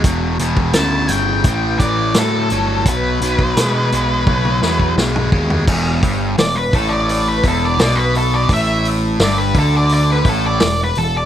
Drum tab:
CC |----------------|----------------|x---------------|----------------|
HH |x-x-x-x-x-x-x-x-|x-x-x-x---------|--o-o-o-o-o-o-o-|o-o-o-o-o-o-o-o-|
SD |----o-------o---|----o-----o-o---|----o-------o---|----o-------o---|
T1 |----------------|--------oo------|----------------|----------------|
T2 |----------------|-------------o--|----------------|----------------|
FT |----------------|---------------o|----------------|----------------|
BD |o--o----o-o-----|o--o----o--o--o-|o-o---o---o-----|o-----o---o-----|